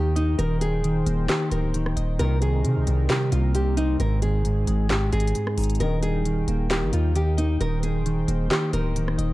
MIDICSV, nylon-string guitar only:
0, 0, Header, 1, 2, 480
1, 0, Start_track
1, 0, Key_signature, -3, "major"
1, 0, Tempo, 451128
1, 414, Time_signature, 4, 2, 24, 8
1, 9929, End_track
2, 0, Start_track
2, 0, Title_t, "Nylon-string guitar"
2, 0, Program_c, 0, 24
2, 0, Note_on_c, 0, 67, 83
2, 133, Note_off_c, 0, 67, 0
2, 172, Note_on_c, 0, 63, 93
2, 373, Note_off_c, 0, 63, 0
2, 410, Note_on_c, 0, 70, 107
2, 611, Note_off_c, 0, 70, 0
2, 652, Note_on_c, 0, 68, 81
2, 1330, Note_off_c, 0, 68, 0
2, 1373, Note_on_c, 0, 67, 88
2, 1574, Note_off_c, 0, 67, 0
2, 1614, Note_on_c, 0, 70, 82
2, 2291, Note_off_c, 0, 70, 0
2, 2333, Note_on_c, 0, 70, 109
2, 2533, Note_off_c, 0, 70, 0
2, 2573, Note_on_c, 0, 68, 74
2, 3251, Note_off_c, 0, 68, 0
2, 3294, Note_on_c, 0, 67, 89
2, 3494, Note_off_c, 0, 67, 0
2, 3534, Note_on_c, 0, 65, 81
2, 3734, Note_off_c, 0, 65, 0
2, 3775, Note_on_c, 0, 67, 87
2, 3975, Note_off_c, 0, 67, 0
2, 4012, Note_on_c, 0, 63, 93
2, 4213, Note_off_c, 0, 63, 0
2, 4256, Note_on_c, 0, 70, 105
2, 4455, Note_off_c, 0, 70, 0
2, 4491, Note_on_c, 0, 68, 82
2, 5170, Note_off_c, 0, 68, 0
2, 5212, Note_on_c, 0, 67, 85
2, 5413, Note_off_c, 0, 67, 0
2, 5454, Note_on_c, 0, 68, 80
2, 6131, Note_off_c, 0, 68, 0
2, 6174, Note_on_c, 0, 70, 108
2, 6374, Note_off_c, 0, 70, 0
2, 6411, Note_on_c, 0, 68, 75
2, 7090, Note_off_c, 0, 68, 0
2, 7133, Note_on_c, 0, 67, 87
2, 7334, Note_off_c, 0, 67, 0
2, 7373, Note_on_c, 0, 65, 77
2, 7574, Note_off_c, 0, 65, 0
2, 7614, Note_on_c, 0, 67, 83
2, 7814, Note_off_c, 0, 67, 0
2, 7853, Note_on_c, 0, 63, 89
2, 8054, Note_off_c, 0, 63, 0
2, 8093, Note_on_c, 0, 70, 107
2, 8294, Note_off_c, 0, 70, 0
2, 8333, Note_on_c, 0, 68, 79
2, 9011, Note_off_c, 0, 68, 0
2, 9053, Note_on_c, 0, 67, 88
2, 9253, Note_off_c, 0, 67, 0
2, 9294, Note_on_c, 0, 70, 84
2, 9929, Note_off_c, 0, 70, 0
2, 9929, End_track
0, 0, End_of_file